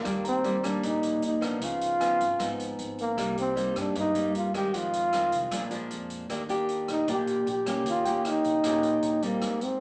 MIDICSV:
0, 0, Header, 1, 6, 480
1, 0, Start_track
1, 0, Key_signature, -3, "major"
1, 0, Tempo, 390371
1, 61, Time_signature, 4, 2, 24, 8
1, 12051, End_track
2, 0, Start_track
2, 0, Title_t, "Tine electric piano"
2, 0, Program_c, 0, 4
2, 257, Control_c, 0, 64, 127
2, 301, Note_on_c, 0, 82, 41
2, 1713, Note_off_c, 0, 82, 0
2, 1998, Control_c, 0, 64, 0
2, 2199, Control_c, 0, 64, 127
2, 2465, Note_on_c, 0, 80, 48
2, 3875, Note_off_c, 0, 80, 0
2, 3919, Control_c, 0, 64, 0
2, 7748, Note_on_c, 0, 74, 36
2, 8001, Control_c, 0, 64, 127
2, 9155, Note_off_c, 0, 74, 0
2, 9680, Control_c, 0, 64, 0
2, 9882, Control_c, 0, 64, 127
2, 9901, Note_on_c, 0, 79, 50
2, 11311, Note_off_c, 0, 79, 0
2, 11597, Control_c, 0, 64, 0
2, 11847, Control_c, 0, 64, 127
2, 12051, End_track
3, 0, Start_track
3, 0, Title_t, "Trombone"
3, 0, Program_c, 1, 57
3, 0, Note_on_c, 1, 58, 77
3, 293, Note_off_c, 1, 58, 0
3, 347, Note_on_c, 1, 60, 91
3, 824, Note_on_c, 1, 62, 79
3, 843, Note_off_c, 1, 60, 0
3, 1057, Note_on_c, 1, 63, 90
3, 1076, Note_off_c, 1, 62, 0
3, 1520, Note_off_c, 1, 63, 0
3, 1543, Note_on_c, 1, 63, 78
3, 1780, Note_on_c, 1, 62, 84
3, 1798, Note_off_c, 1, 63, 0
3, 2018, Note_on_c, 1, 65, 110
3, 2037, Note_off_c, 1, 62, 0
3, 3442, Note_off_c, 1, 65, 0
3, 3700, Note_on_c, 1, 58, 83
3, 4130, Note_off_c, 1, 58, 0
3, 4177, Note_on_c, 1, 60, 96
3, 4662, Note_on_c, 1, 62, 84
3, 4680, Note_off_c, 1, 60, 0
3, 4883, Note_off_c, 1, 62, 0
3, 4904, Note_on_c, 1, 63, 94
3, 5332, Note_off_c, 1, 63, 0
3, 5369, Note_on_c, 1, 65, 84
3, 5581, Note_off_c, 1, 65, 0
3, 5615, Note_on_c, 1, 67, 91
3, 5855, Note_on_c, 1, 65, 103
3, 5873, Note_off_c, 1, 67, 0
3, 7279, Note_off_c, 1, 65, 0
3, 8491, Note_on_c, 1, 63, 93
3, 8746, Note_on_c, 1, 67, 107
3, 8765, Note_off_c, 1, 63, 0
3, 9205, Note_off_c, 1, 67, 0
3, 9231, Note_on_c, 1, 67, 85
3, 9655, Note_off_c, 1, 67, 0
3, 9705, Note_on_c, 1, 65, 95
3, 10189, Note_on_c, 1, 63, 96
3, 10208, Note_off_c, 1, 65, 0
3, 11373, Note_on_c, 1, 58, 91
3, 11391, Note_off_c, 1, 63, 0
3, 11846, Note_on_c, 1, 60, 86
3, 11864, Note_off_c, 1, 58, 0
3, 12051, Note_off_c, 1, 60, 0
3, 12051, End_track
4, 0, Start_track
4, 0, Title_t, "Nylon-string guitar"
4, 0, Program_c, 2, 24
4, 54, Note_on_c, 2, 51, 53
4, 59, Note_on_c, 2, 55, 51
4, 64, Note_on_c, 2, 62, 48
4, 66, Note_on_c, 2, 58, 49
4, 502, Note_off_c, 2, 55, 0
4, 504, Note_off_c, 2, 58, 0
4, 505, Note_off_c, 2, 62, 0
4, 542, Note_on_c, 2, 55, 54
4, 545, Note_on_c, 2, 58, 54
4, 554, Note_on_c, 2, 62, 55
4, 683, Note_off_c, 2, 55, 0
4, 684, Note_off_c, 2, 58, 0
4, 689, Note_off_c, 2, 62, 0
4, 777, Note_on_c, 2, 55, 54
4, 781, Note_on_c, 2, 58, 58
4, 995, Note_off_c, 2, 51, 0
4, 1023, Note_on_c, 2, 46, 56
4, 1703, Note_off_c, 2, 55, 0
4, 1703, Note_off_c, 2, 58, 0
4, 1732, Note_on_c, 2, 53, 58
4, 1737, Note_on_c, 2, 59, 54
4, 1740, Note_on_c, 2, 63, 62
4, 1960, Note_off_c, 2, 46, 0
4, 1985, Note_on_c, 2, 49, 51
4, 2421, Note_off_c, 2, 53, 0
4, 2421, Note_off_c, 2, 59, 0
4, 2424, Note_off_c, 2, 63, 0
4, 2457, Note_on_c, 2, 53, 57
4, 2465, Note_on_c, 2, 59, 55
4, 2472, Note_on_c, 2, 63, 61
4, 2770, Note_off_c, 2, 53, 0
4, 2774, Note_off_c, 2, 59, 0
4, 2776, Note_off_c, 2, 63, 0
4, 2921, Note_off_c, 2, 49, 0
4, 2937, Note_on_c, 2, 44, 54
4, 2940, Note_on_c, 2, 53, 51
4, 2943, Note_on_c, 2, 59, 56
4, 2947, Note_on_c, 2, 63, 70
4, 3863, Note_off_c, 2, 53, 0
4, 3866, Note_off_c, 2, 59, 0
4, 3867, Note_off_c, 2, 63, 0
4, 3878, Note_off_c, 2, 44, 0
4, 3898, Note_on_c, 2, 48, 52
4, 3906, Note_on_c, 2, 58, 47
4, 3907, Note_on_c, 2, 55, 57
4, 3912, Note_on_c, 2, 63, 58
4, 4346, Note_off_c, 2, 55, 0
4, 4347, Note_off_c, 2, 58, 0
4, 4350, Note_off_c, 2, 63, 0
4, 4372, Note_on_c, 2, 55, 48
4, 4378, Note_on_c, 2, 58, 51
4, 4385, Note_on_c, 2, 63, 51
4, 4838, Note_off_c, 2, 48, 0
4, 4861, Note_on_c, 2, 43, 56
4, 5060, Note_off_c, 2, 55, 0
4, 5061, Note_off_c, 2, 58, 0
4, 5066, Note_off_c, 2, 63, 0
4, 5100, Note_on_c, 2, 55, 56
4, 5102, Note_on_c, 2, 58, 57
4, 5107, Note_on_c, 2, 63, 61
4, 5544, Note_off_c, 2, 55, 0
4, 5544, Note_off_c, 2, 58, 0
4, 5548, Note_off_c, 2, 63, 0
4, 5585, Note_on_c, 2, 51, 62
4, 5591, Note_on_c, 2, 56, 65
4, 5595, Note_on_c, 2, 60, 54
4, 5799, Note_off_c, 2, 43, 0
4, 5828, Note_on_c, 2, 41, 53
4, 6267, Note_off_c, 2, 51, 0
4, 6268, Note_off_c, 2, 56, 0
4, 6271, Note_off_c, 2, 60, 0
4, 6309, Note_on_c, 2, 51, 49
4, 6313, Note_on_c, 2, 56, 50
4, 6321, Note_on_c, 2, 60, 59
4, 6762, Note_off_c, 2, 41, 0
4, 6768, Note_off_c, 2, 51, 0
4, 6769, Note_off_c, 2, 56, 0
4, 6773, Note_off_c, 2, 60, 0
4, 6783, Note_on_c, 2, 46, 56
4, 6786, Note_on_c, 2, 53, 50
4, 6795, Note_on_c, 2, 62, 60
4, 6796, Note_on_c, 2, 56, 55
4, 6986, Note_off_c, 2, 53, 0
4, 6988, Note_off_c, 2, 56, 0
4, 6991, Note_off_c, 2, 62, 0
4, 7017, Note_on_c, 2, 53, 60
4, 7024, Note_on_c, 2, 56, 56
4, 7030, Note_on_c, 2, 62, 64
4, 7703, Note_off_c, 2, 53, 0
4, 7705, Note_off_c, 2, 56, 0
4, 7709, Note_off_c, 2, 62, 0
4, 7722, Note_off_c, 2, 46, 0
4, 7745, Note_on_c, 2, 51, 53
4, 7748, Note_on_c, 2, 58, 55
4, 7751, Note_on_c, 2, 62, 55
4, 7753, Note_on_c, 2, 67, 48
4, 7887, Note_off_c, 2, 58, 0
4, 7888, Note_off_c, 2, 62, 0
4, 7890, Note_off_c, 2, 67, 0
4, 7977, Note_on_c, 2, 58, 64
4, 7983, Note_on_c, 2, 62, 61
4, 7992, Note_on_c, 2, 67, 75
4, 8662, Note_off_c, 2, 58, 0
4, 8665, Note_off_c, 2, 62, 0
4, 8668, Note_off_c, 2, 67, 0
4, 8681, Note_off_c, 2, 51, 0
4, 8708, Note_on_c, 2, 58, 61
4, 8709, Note_on_c, 2, 46, 57
4, 8715, Note_on_c, 2, 62, 53
4, 8725, Note_on_c, 2, 67, 61
4, 9182, Note_off_c, 2, 58, 0
4, 9187, Note_off_c, 2, 62, 0
4, 9189, Note_off_c, 2, 67, 0
4, 9430, Note_on_c, 2, 58, 59
4, 9437, Note_on_c, 2, 61, 59
4, 9437, Note_on_c, 2, 67, 66
4, 9642, Note_off_c, 2, 46, 0
4, 9674, Note_on_c, 2, 51, 49
4, 9869, Note_off_c, 2, 58, 0
4, 9871, Note_off_c, 2, 61, 0
4, 9872, Note_off_c, 2, 67, 0
4, 9918, Note_on_c, 2, 58, 65
4, 9924, Note_on_c, 2, 61, 64
4, 9928, Note_on_c, 2, 67, 66
4, 10592, Note_off_c, 2, 58, 0
4, 10594, Note_off_c, 2, 61, 0
4, 10597, Note_off_c, 2, 67, 0
4, 10604, Note_off_c, 2, 51, 0
4, 10626, Note_on_c, 2, 46, 61
4, 10631, Note_on_c, 2, 58, 54
4, 10631, Note_on_c, 2, 61, 54
4, 10639, Note_on_c, 2, 67, 60
4, 11307, Note_off_c, 2, 58, 0
4, 11308, Note_off_c, 2, 61, 0
4, 11310, Note_off_c, 2, 67, 0
4, 11344, Note_on_c, 2, 55, 52
4, 11351, Note_on_c, 2, 60, 57
4, 11361, Note_on_c, 2, 63, 59
4, 11560, Note_off_c, 2, 46, 0
4, 11580, Note_on_c, 2, 44, 52
4, 11784, Note_off_c, 2, 55, 0
4, 11788, Note_off_c, 2, 60, 0
4, 11791, Note_off_c, 2, 63, 0
4, 12051, Note_off_c, 2, 44, 0
4, 12051, End_track
5, 0, Start_track
5, 0, Title_t, "Upright bass"
5, 0, Program_c, 3, 32
5, 65, Note_on_c, 3, 39, 88
5, 735, Note_off_c, 3, 39, 0
5, 788, Note_on_c, 3, 34, 73
5, 1009, Note_off_c, 3, 34, 0
5, 1032, Note_on_c, 3, 34, 91
5, 1474, Note_off_c, 3, 34, 0
5, 1509, Note_on_c, 3, 34, 79
5, 1989, Note_off_c, 3, 34, 0
5, 1989, Note_on_c, 3, 37, 105
5, 2657, Note_off_c, 3, 37, 0
5, 2706, Note_on_c, 3, 32, 81
5, 2928, Note_off_c, 3, 32, 0
5, 2948, Note_on_c, 3, 32, 84
5, 3393, Note_off_c, 3, 32, 0
5, 3424, Note_on_c, 3, 32, 81
5, 3909, Note_off_c, 3, 32, 0
5, 3909, Note_on_c, 3, 36, 98
5, 4578, Note_off_c, 3, 36, 0
5, 4627, Note_on_c, 3, 43, 75
5, 4849, Note_off_c, 3, 43, 0
5, 4867, Note_on_c, 3, 43, 91
5, 5312, Note_off_c, 3, 43, 0
5, 5344, Note_on_c, 3, 43, 91
5, 5827, Note_off_c, 3, 43, 0
5, 5827, Note_on_c, 3, 41, 100
5, 6496, Note_off_c, 3, 41, 0
5, 6540, Note_on_c, 3, 36, 74
5, 6765, Note_off_c, 3, 36, 0
5, 6784, Note_on_c, 3, 34, 85
5, 7260, Note_on_c, 3, 41, 82
5, 7279, Note_off_c, 3, 34, 0
5, 7741, Note_off_c, 3, 41, 0
5, 7741, Note_on_c, 3, 39, 94
5, 8413, Note_off_c, 3, 39, 0
5, 8462, Note_on_c, 3, 34, 74
5, 8686, Note_off_c, 3, 34, 0
5, 8705, Note_on_c, 3, 34, 93
5, 9151, Note_off_c, 3, 34, 0
5, 9178, Note_on_c, 3, 34, 89
5, 9663, Note_off_c, 3, 34, 0
5, 9663, Note_on_c, 3, 39, 89
5, 10334, Note_off_c, 3, 39, 0
5, 10375, Note_on_c, 3, 34, 81
5, 10602, Note_off_c, 3, 34, 0
5, 10622, Note_on_c, 3, 34, 95
5, 11068, Note_off_c, 3, 34, 0
5, 11096, Note_on_c, 3, 34, 86
5, 11579, Note_off_c, 3, 34, 0
5, 11579, Note_on_c, 3, 32, 98
5, 12051, Note_off_c, 3, 32, 0
5, 12051, End_track
6, 0, Start_track
6, 0, Title_t, "Drums"
6, 62, Note_on_c, 9, 37, 53
6, 62, Note_on_c, 9, 42, 54
6, 65, Note_on_c, 9, 36, 53
6, 185, Note_off_c, 9, 37, 0
6, 185, Note_off_c, 9, 42, 0
6, 188, Note_off_c, 9, 36, 0
6, 304, Note_on_c, 9, 42, 43
6, 427, Note_off_c, 9, 42, 0
6, 544, Note_on_c, 9, 42, 40
6, 667, Note_off_c, 9, 42, 0
6, 785, Note_on_c, 9, 37, 52
6, 785, Note_on_c, 9, 42, 37
6, 908, Note_off_c, 9, 37, 0
6, 908, Note_off_c, 9, 42, 0
6, 1023, Note_on_c, 9, 42, 53
6, 1027, Note_on_c, 9, 36, 51
6, 1146, Note_off_c, 9, 42, 0
6, 1150, Note_off_c, 9, 36, 0
6, 1263, Note_on_c, 9, 42, 41
6, 1386, Note_off_c, 9, 42, 0
6, 1502, Note_on_c, 9, 42, 46
6, 1625, Note_off_c, 9, 42, 0
6, 1747, Note_on_c, 9, 36, 54
6, 1747, Note_on_c, 9, 37, 58
6, 1747, Note_on_c, 9, 42, 42
6, 1870, Note_off_c, 9, 36, 0
6, 1870, Note_off_c, 9, 37, 0
6, 1870, Note_off_c, 9, 42, 0
6, 1985, Note_on_c, 9, 42, 55
6, 1987, Note_on_c, 9, 36, 52
6, 2108, Note_off_c, 9, 42, 0
6, 2110, Note_off_c, 9, 36, 0
6, 2229, Note_on_c, 9, 42, 47
6, 2351, Note_off_c, 9, 42, 0
6, 2469, Note_on_c, 9, 37, 53
6, 2469, Note_on_c, 9, 42, 43
6, 2592, Note_off_c, 9, 37, 0
6, 2592, Note_off_c, 9, 42, 0
6, 2712, Note_on_c, 9, 42, 41
6, 2835, Note_off_c, 9, 42, 0
6, 2946, Note_on_c, 9, 36, 55
6, 2946, Note_on_c, 9, 37, 57
6, 2946, Note_on_c, 9, 42, 57
6, 3069, Note_off_c, 9, 36, 0
6, 3069, Note_off_c, 9, 37, 0
6, 3069, Note_off_c, 9, 42, 0
6, 3191, Note_on_c, 9, 42, 43
6, 3314, Note_off_c, 9, 42, 0
6, 3426, Note_on_c, 9, 42, 42
6, 3549, Note_off_c, 9, 42, 0
6, 3669, Note_on_c, 9, 42, 39
6, 3792, Note_off_c, 9, 42, 0
6, 3905, Note_on_c, 9, 36, 53
6, 3906, Note_on_c, 9, 37, 52
6, 3906, Note_on_c, 9, 42, 52
6, 4028, Note_off_c, 9, 36, 0
6, 4029, Note_off_c, 9, 37, 0
6, 4029, Note_off_c, 9, 42, 0
6, 4149, Note_on_c, 9, 42, 42
6, 4272, Note_off_c, 9, 42, 0
6, 4387, Note_on_c, 9, 42, 42
6, 4510, Note_off_c, 9, 42, 0
6, 4622, Note_on_c, 9, 37, 56
6, 4622, Note_on_c, 9, 42, 43
6, 4745, Note_off_c, 9, 37, 0
6, 4745, Note_off_c, 9, 42, 0
6, 4861, Note_on_c, 9, 42, 49
6, 4863, Note_on_c, 9, 36, 58
6, 4984, Note_off_c, 9, 42, 0
6, 4986, Note_off_c, 9, 36, 0
6, 5102, Note_on_c, 9, 42, 41
6, 5225, Note_off_c, 9, 42, 0
6, 5346, Note_on_c, 9, 42, 44
6, 5469, Note_off_c, 9, 42, 0
6, 5586, Note_on_c, 9, 36, 55
6, 5587, Note_on_c, 9, 37, 52
6, 5587, Note_on_c, 9, 42, 40
6, 5709, Note_off_c, 9, 36, 0
6, 5710, Note_off_c, 9, 37, 0
6, 5710, Note_off_c, 9, 42, 0
6, 5826, Note_on_c, 9, 36, 49
6, 5827, Note_on_c, 9, 42, 50
6, 5949, Note_off_c, 9, 36, 0
6, 5950, Note_off_c, 9, 42, 0
6, 6067, Note_on_c, 9, 42, 46
6, 6190, Note_off_c, 9, 42, 0
6, 6304, Note_on_c, 9, 37, 57
6, 6304, Note_on_c, 9, 42, 43
6, 6427, Note_off_c, 9, 37, 0
6, 6427, Note_off_c, 9, 42, 0
6, 6543, Note_on_c, 9, 42, 44
6, 6666, Note_off_c, 9, 42, 0
6, 6779, Note_on_c, 9, 37, 58
6, 6779, Note_on_c, 9, 42, 61
6, 6782, Note_on_c, 9, 36, 57
6, 6902, Note_off_c, 9, 37, 0
6, 6902, Note_off_c, 9, 42, 0
6, 6905, Note_off_c, 9, 36, 0
6, 7018, Note_on_c, 9, 42, 38
6, 7141, Note_off_c, 9, 42, 0
6, 7262, Note_on_c, 9, 42, 41
6, 7385, Note_off_c, 9, 42, 0
6, 7500, Note_on_c, 9, 42, 39
6, 7623, Note_off_c, 9, 42, 0
6, 7742, Note_on_c, 9, 36, 55
6, 7742, Note_on_c, 9, 37, 48
6, 7742, Note_on_c, 9, 42, 53
6, 7865, Note_off_c, 9, 36, 0
6, 7865, Note_off_c, 9, 37, 0
6, 7865, Note_off_c, 9, 42, 0
6, 7983, Note_on_c, 9, 42, 40
6, 8106, Note_off_c, 9, 42, 0
6, 8221, Note_on_c, 9, 42, 38
6, 8344, Note_off_c, 9, 42, 0
6, 8462, Note_on_c, 9, 37, 51
6, 8462, Note_on_c, 9, 42, 41
6, 8585, Note_off_c, 9, 37, 0
6, 8585, Note_off_c, 9, 42, 0
6, 8703, Note_on_c, 9, 36, 61
6, 8704, Note_on_c, 9, 42, 53
6, 8826, Note_off_c, 9, 36, 0
6, 8827, Note_off_c, 9, 42, 0
6, 8942, Note_on_c, 9, 42, 39
6, 9065, Note_off_c, 9, 42, 0
6, 9184, Note_on_c, 9, 42, 42
6, 9307, Note_off_c, 9, 42, 0
6, 9423, Note_on_c, 9, 36, 51
6, 9423, Note_on_c, 9, 37, 58
6, 9423, Note_on_c, 9, 42, 44
6, 9546, Note_off_c, 9, 36, 0
6, 9546, Note_off_c, 9, 37, 0
6, 9546, Note_off_c, 9, 42, 0
6, 9662, Note_on_c, 9, 42, 52
6, 9663, Note_on_c, 9, 36, 58
6, 9785, Note_off_c, 9, 42, 0
6, 9786, Note_off_c, 9, 36, 0
6, 9901, Note_on_c, 9, 42, 43
6, 10024, Note_off_c, 9, 42, 0
6, 10141, Note_on_c, 9, 37, 58
6, 10141, Note_on_c, 9, 42, 41
6, 10264, Note_off_c, 9, 37, 0
6, 10264, Note_off_c, 9, 42, 0
6, 10382, Note_on_c, 9, 42, 42
6, 10505, Note_off_c, 9, 42, 0
6, 10619, Note_on_c, 9, 37, 57
6, 10619, Note_on_c, 9, 42, 57
6, 10622, Note_on_c, 9, 36, 55
6, 10742, Note_off_c, 9, 37, 0
6, 10742, Note_off_c, 9, 42, 0
6, 10744, Note_off_c, 9, 36, 0
6, 10857, Note_on_c, 9, 42, 44
6, 10980, Note_off_c, 9, 42, 0
6, 11097, Note_on_c, 9, 42, 46
6, 11220, Note_off_c, 9, 42, 0
6, 11340, Note_on_c, 9, 42, 45
6, 11463, Note_off_c, 9, 42, 0
6, 11575, Note_on_c, 9, 37, 53
6, 11575, Note_on_c, 9, 42, 51
6, 11578, Note_on_c, 9, 36, 57
6, 11698, Note_off_c, 9, 37, 0
6, 11698, Note_off_c, 9, 42, 0
6, 11701, Note_off_c, 9, 36, 0
6, 11817, Note_on_c, 9, 42, 47
6, 11940, Note_off_c, 9, 42, 0
6, 12051, End_track
0, 0, End_of_file